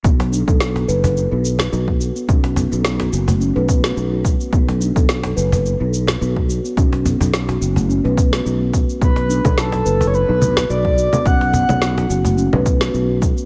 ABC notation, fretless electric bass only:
X:1
M:4/4
L:1/16
Q:"Swing 16ths" 1/4=107
K:Bm
V:1 name="Fretless electric bass" clef=bass
B,,,3 B,,,3 F,,,3 B,,,3 B,,,3 z | B,,,3 B,,,3 F,,,3 B,,,3 B,,,3 z | B,,,3 B,,,3 F,,,3 B,,,3 B,,,3 z | B,,,3 B,,,3 F,,,3 B,,,3 B,,,3 z |
B,,,3 B,,,3 F,,,3 B,,,3 B,,,3 z | B,,,3 B,,,3 F,,,3 B,,,3 B,,,3 z |]